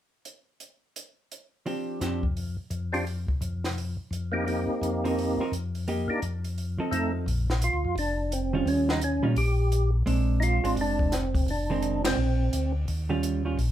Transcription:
0.25 closed hi-hat
0.60 closed hi-hat
0.96 closed hi-hat
1.32 closed hi-hat
1.66 F3 C4 D4 G4, open hi-hat
2.01 F2 F3 C4 D4 G4, snare, closed hi-hat
2.23 kick
2.37 open hi-hat
2.70 F2, closed hi-hat
2.93 C4 D4 F4 G4, open hi-hat
3.07 open hi-hat
3.28 kick
3.41 F2, closed hi-hat
3.64 snare, open hi-hat
3.78 open hi-hat
4.11 F2, closed hi-hat
4.32 A#3 C4 D#4 G4
4.45 A#3 C4 D#4 G4, open hi-hat
4.82 F2, closed hi-hat
5.04 F3 C4 D#4 A#4, open hi-hat
5.19 open hi-hat
5.40 F3 C4 D#4 A#4
5.52 F2, closed hi-hat
5.75 open hi-hat
5.88 A#3 D#4 G4, open hi-hat
6.08 A#3 D4 D#4 G4
6.22 F2, closed hi-hat
6.44 open hi-hat
6.58 open hi-hat
6.78 F3 C4 D#4 A4
6.91 F2 A3 C4 D#4 A4, closed hi-hat
7.26 A#1, open hi-hat
7.50 snare
7.62 F4, closed hi-hat
7.73 D2
7.85 F2
7.96 F1 D4, open hi-hat
8.32 C4, closed hi-hat
8.53 D#3 G3 C#4 F4
8.66 D#2 C#4, open hi-hat
8.89 D#4, snare
9.01 C#4, closed hi-hat
9.23 A#2 D#3 G3 C#4 D#4 F4
9.35 A#1 G4, open hi-hat
9.72 closed hi-hat
10.06 A#1 G#3 C4 D4, open hi-hat
10.40 D#4 F4, closed hi-hat
10.64 G#1 G#3 C4 D4, open hi-hat
10.77 F1, open hi-hat
10.81 D4
10.99 kick
11.12 C4, snare, closed hi-hat
11.35 kick, open hi-hat
11.46 F1, open hi-hat
11.50 D4
11.70 D#3 G#3 C4
11.82 closed hi-hat
12.04 G#3 C4 D4, snare, ride
12.16 A#1
12.53 D2, closed hi-hat
12.88 D#2, open hi-hat
13.09 D#3 G3 C#4 F4
13.23 closed hi-hat
13.45 D#3 G3 C#4 F4
13.58 A#1, open hi-hat

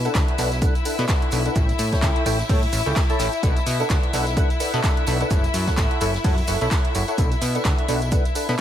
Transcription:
Already playing: E4 E5
0.05 D4 A4 B4 F#5, closed hi-hat, tambourine
0.15 D2, kick, snare, clap, closed hi-hat, tambourine, shaker
0.28 closed hi-hat
0.38 B1 D4 A4 B4 F#5, snare, open hi-hat, tambourine, shaker
0.52 snare, closed hi-hat, tambourine
0.62 D4 A4 B4 F#5, kick, closed hi-hat, tambourine, shaker
0.75 closed hi-hat, tambourine
0.85 D4 A4 B4 F#5, open hi-hat, tambourine, shaker
0.98 B2 D4 A4 B4 B5, snare, closed hi-hat, tambourine
1.08 D4 A4 B4 F#5, kick, snare, clap, closed hi-hat, tambourine, shaker
1.22 closed hi-hat
1.31 B1 D4 A4 B4 F#5, open hi-hat, tambourine, shaker
1.45 D4 A4 B4 F#5, closed hi-hat, tambourine
1.55 A1 E4 A4 C#5 G5, kick, closed hi-hat, tambourine, shaker
1.69 closed hi-hat, tambourine
1.79 A2, open hi-hat, tambourine, shaker
1.92 E4 A4 C#5 G5, kick, snare, closed hi-hat, tambourine
2.02 C#2, kick, snare, clap, closed hi-hat, tambourine, shaker
2.16 closed hi-hat
2.26 A1 E4 A4 C#5 G5, open hi-hat, tambourine, shaker
2.38 snare, closed hi-hat, tambourine
2.49 A2 E4 A4 C#5 G5, kick, closed hi-hat, open hi-hat, tambourine
2.63 closed hi-hat, tambourine
2.72 A1, open hi-hat, tambourine, shaker
2.86 C#2 E4 A4 C#5 G5, closed hi-hat, tambourine
2.96 kick, snare, clap, closed hi-hat, tambourine, shaker
3.10 E4 A4 C#5 A5, closed hi-hat, tambourine
3.19 A1 E4 A4 C#5 G5, snare, open hi-hat, tambourine, shaker
3.32 closed hi-hat, tambourine
3.43 B1 D4 A4 B4 F#5, kick, closed hi-hat, tambourine, shaker
3.57 closed hi-hat, tambourine
3.66 B2, snare, open hi-hat, tambourine, shaker
3.80 D4 A4 B4 F#5, closed hi-hat, tambourine
3.90 D2, kick, snare, clap, closed hi-hat, tambourine, shaker
4.03 closed hi-hat
4.13 B1 D4 A4 B4 F#5, snare, open hi-hat, tambourine, shaker
4.27 snare, closed hi-hat, tambourine
4.36 D4 A4 B4 F#5, kick, closed hi-hat, tambourine, shaker
4.50 closed hi-hat, tambourine
4.60 D4 A4 B4 F#5, open hi-hat, tambourine, shaker
4.74 B2 D4 A4 B4 B5, snare, closed hi-hat, tambourine
4.83 D4 A4 B4 F#5, kick, snare, clap, closed hi-hat, tambourine, shaker
4.97 closed hi-hat
5.07 B1 D4 A4 B4 F#5, open hi-hat, tambourine, shaker
5.20 D4 A4 B4 F#5, closed hi-hat, tambourine
5.30 F#1 E4 A4 C#5 F#5, kick, closed hi-hat, tambourine, shaker
5.44 closed hi-hat, tambourine
5.54 F#2, open hi-hat, tambourine, shaker
5.67 E4 A4 C#5 F#5, kick, snare, closed hi-hat, tambourine
5.77 A1, kick, snare, clap, closed hi-hat, tambourine, shaker
5.91 closed hi-hat
6.01 F#1 E4 A4 C#5 F#5, open hi-hat, tambourine, shaker
6.14 snare, closed hi-hat, tambourine
6.24 F#2 E4 A4 C#5 F#5, kick, closed hi-hat, open hi-hat, tambourine
6.38 closed hi-hat, tambourine
6.47 F#1 E4 A4 C#5 F#5, open hi-hat, tambourine, shaker
6.61 B1 E4 A4 C#5 B5, closed hi-hat, tambourine
6.71 E4 F#5, kick, snare, clap, closed hi-hat, tambourine, shaker
6.85 closed hi-hat
6.95 F#1 E4 A4 C#5 F#5, open hi-hat, tambourine, shaker
7.08 E4 A4 C#5 F#5, closed hi-hat, tambourine
7.18 B1 D4 A4 B4 F#5, kick, closed hi-hat, tambourine, shaker
7.32 closed hi-hat, tambourine
7.41 B2, snare, open hi-hat, tambourine, shaker
7.55 D4 A4 B4 F#5, closed hi-hat, tambourine
7.65 D2, kick, snare, clap, closed hi-hat, tambourine, shaker
7.78 closed hi-hat
7.88 B1 D4 A4 B4 F#5, open hi-hat, tambourine
8.02 closed hi-hat, tambourine
8.12 D4 A4 B4 F#5, kick, closed hi-hat, tambourine, shaker
8.25 closed hi-hat, tambourine
8.35 D4 A4 B4 F#5, open hi-hat, tambourine, shaker
8.48 B2 D4 A4 B4 B5, snare, closed hi-hat, tambourine

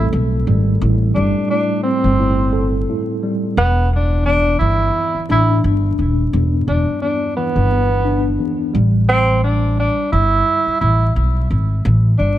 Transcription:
Already playing: A2 G3 A3 C4 A4
0.13 B1
0.47 G#1 G3
0.81 A1 A2
1.15 G1 G3 D4
1.50 A2 D4
1.83 C4
2.04 G1
2.19 A2
2.53 A4
2.89 A2
3.23 G3
3.57 E1 E2 B3
3.92 G2 D4
4.25 E2 D4
4.59 G1 E3 E4
5.15 muted upright bass stroke
5.29 A1 D4 E4
5.64 G1
5.99 D#1 G2
6.33 E1 E2
6.67 E1 G2 D4
7.02 E2 D4
7.37 E3 B3
7.56 G1
7.71 E2
8.05 D4
8.40 E2
8.74 A1 G3
9.09 C4
9.44 D4
9.79 D4
10.12 G1 E4
10.66 muted upright bass stroke
10.81 A1 E4
11.16 B1
11.51 G#1
11.85 A1
12.18 G1 D4

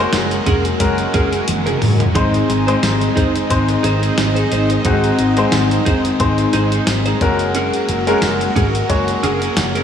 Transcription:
Already playing: F#2 C#3 F#3 G#3 A#3 F#4 G#4 A#4
0.00 C#4 F#4 G#4 C5
0.13 F#1 C#3 F#3, snare, closed hi-hat, tambourine
0.31 muted clean electric guitar stroke, closed hi-hat
0.46 F1 C#4 G#4 A#4, kick, closed hi-hat
0.65 muted clean electric guitar stroke, closed hi-hat
0.79 F#1 F#2 C#3 G#3 C#4 F#4 A#4, muted clean electric guitar stroke, kick, closed hi-hat
0.86 F#3
0.98 muted clean electric guitar stroke, closed hi-hat
1.14 F#1 C#4 G#4 A#4, kick, closed hi-hat
1.32 C#4 G#4 A#4, closed hi-hat
1.48 F#1, muted clean electric guitar stroke, closed hi-hat, high tom
1.66 C#4 G#4 A#4, closed hi-hat, mid tom
1.81 F#1, muted clean electric guitar stroke, mid tom, open hi-hat
2.00 muted clean electric guitar stroke, closed hi-hat, floor tom
2.15 G#1 G#2 D#3 G#3 C4 D#4 G#4 C5, kick, closed hi-hat
2.34 closed hi-hat
2.48 G#1, muted clean electric guitar stroke, closed hi-hat
2.67 G#3 C4 D#4 G#4 C5, closed hi-hat
2.83 G#1 G#2 D#3 G#3, snare, closed hi-hat, tambourine
3.01 muted clean electric guitar stroke, closed hi-hat
3.16 F#1 D#4 G#4 C5, kick, closed hi-hat
3.35 muted clean electric guitar stroke, closed hi-hat
3.49 G#1 G#2 D#3 G#3 C4 D#4 C5, muted clean electric guitar stroke, kick, closed hi-hat
3.56 G#3
3.69 muted clean electric guitar stroke, closed hi-hat
3.83 G#1 D#4 G#4 C5, closed hi-hat
4.02 D#4 G#4 C5, closed hi-hat
4.17 G#1, muted clean electric guitar stroke, snare, closed hi-hat, tambourine
4.35 D#4 G#4 C5, closed hi-hat
4.51 G#1 D#4 G#4 C5, closed hi-hat
4.70 muted clean electric guitar stroke, closed hi-hat
4.85 G#1 G#2 D#3 G#3 C4 D#4 F#4 G#4 C5, kick, closed hi-hat
5.04 closed hi-hat
5.18 G#1, muted clean electric guitar stroke, closed hi-hat
5.37 G#3 C4 D#4 G#4 C5, closed hi-hat
5.52 G#1 G#2 D#3 G#3, snare, closed hi-hat, tambourine
5.70 muted clean electric guitar stroke, closed hi-hat
5.85 F#1 D#4 G#4 C5, kick, closed hi-hat
6.05 muted clean electric guitar stroke, closed hi-hat
6.19 G#1 G#2 D#3 G#3 C4 D#4 C5, muted clean electric guitar stroke, kick, closed hi-hat
6.38 muted clean electric guitar stroke, closed hi-hat
6.53 G#1 D#4 G#4 C5, closed hi-hat
6.72 D#4 G#4 C5, closed hi-hat
6.87 G#1, muted clean electric guitar stroke, snare, closed hi-hat, tambourine
7.06 D#4 G#4 C5, closed hi-hat
7.21 F#1 F#2 C#3 F#3 G#3 A#3 C#4 F#4 A#4, muted clean electric guitar stroke, kick, closed hi-hat
7.39 muted clean electric guitar stroke, closed hi-hat
7.55 C#4 G#4 A#4, closed hi-hat
7.74 closed hi-hat
7.89 F#1, muted clean electric guitar stroke, closed hi-hat
8.07 G#3 C#4 F#4 G#4 A#4, closed hi-hat
8.22 F#1 F#2 C#3 F#3, snare, closed hi-hat, tambourine
8.41 muted clean electric guitar stroke, closed hi-hat
8.56 G#1 C#4 G#4 A#4, kick, closed hi-hat
8.75 muted clean electric guitar stroke, closed hi-hat
8.88 F#1 F#2 C#3 G#3 C#4 F#4 C#5, muted clean electric guitar stroke, kick, closed hi-hat
8.95 F#3
9.08 muted clean electric guitar stroke, closed hi-hat
9.23 F#1 C#4 G#4 A#4, closed hi-hat
9.41 C#4 G#4 A#4, closed hi-hat
9.57 F#1, muted clean electric guitar stroke, snare, closed hi-hat, tambourine
9.75 C#4 G#4 A#4, closed hi-hat

